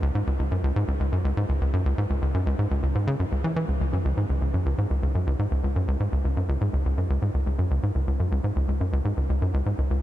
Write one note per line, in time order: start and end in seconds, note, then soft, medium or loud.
0.03 0.11 C#2 loud
0.15 0.24 G#2 medium
0.27 0.39 C#2 medium
0.39 0.51 C#2 medium
0.52 0.63 F#2 medium
0.64 0.72 C#2 loud
0.76 0.84 G#2 medium
0.88 1.00 C#2 medium
1.00 1.12 C#2 medium
1.12 1.24 F#2 medium
1.25 1.33 C#2 loud
1.37 1.45 G#2 medium
1.49 1.61 C#2 medium
1.61 1.73 C#2 medium
1.73 1.85 F#2 medium
1.86 1.94 C#2 loud
1.98 2.06 G#2 medium
2.10 2.22 C#2 medium
2.22 2.34 C#2 medium
2.34 2.46 F#2 medium
2.46 2.55 C#2 loud
2.59 2.67 G#2 medium
2.71 2.83 C#2 medium
2.83 2.95 C#2 medium
2.95 3.07 G#2 medium
3.07 3.16 C#3 loud
3.20 3.25 F#2 medium
3.32 3.44 C#2 medium
3.44 3.56 E3 medium
3.56 3.65 E3 medium
3.68 3.80 C#2 medium
3.81 3.92 C#2 medium
3.93 4.05 F#2 medium
4.05 4.14 C#2 loud
4.17 4.26 G#2 medium
4.30 4.41 C#2 medium
4.42 4.53 C#2 medium
4.54 4.65 F#2 medium
4.66 4.75 C#2 medium
4.78 4.87 G#2 medium
4.90 5.02 C#2 medium
5.03 5.14 C#2 medium
5.15 5.26 F#2 medium
5.27 5.36 C#2 loud
5.39 5.48 G#2 medium
5.51 5.63 C#2 medium
5.64 5.75 C#2 medium
5.76 5.87 F#2 medium
5.88 5.97 C#2 loud
6.00 6.09 G#2 medium
6.12 6.24 C#2 medium
6.25 6.36 C#2 medium
6.37 6.48 F#2 medium
6.49 6.58 C#2 loud
6.61 6.70 G#2 medium
6.73 6.85 C#2 medium
6.86 6.97 C#2 medium
6.98 7.09 F#2 medium
7.10 7.19 C#2 loud
7.22 7.31 G#2 medium
7.34 7.46 C#2 medium
7.46 7.58 C#2 medium
7.59 7.70 F#2 medium
7.71 7.80 C#2 loud
7.83 7.92 G#2 medium
7.95 8.07 C#2 medium
8.07 8.19 C#2 medium
8.20 8.31 F#2 medium
8.32 8.40 C#2 loud
8.44 8.53 G#2 medium
8.56 8.68 C#2 medium
8.68 8.80 C#2 medium
8.81 8.92 F#2 medium
8.93 9.01 C#2 loud
9.05 9.14 G#2 medium
9.17 9.29 C#2 medium
9.29 9.41 C#2 medium
9.42 9.53 F#2 medium
9.54 9.63 C#2 loud
9.66 9.75 G#2 medium
9.78 9.90 C#2 medium
9.90 10.02 C#2 medium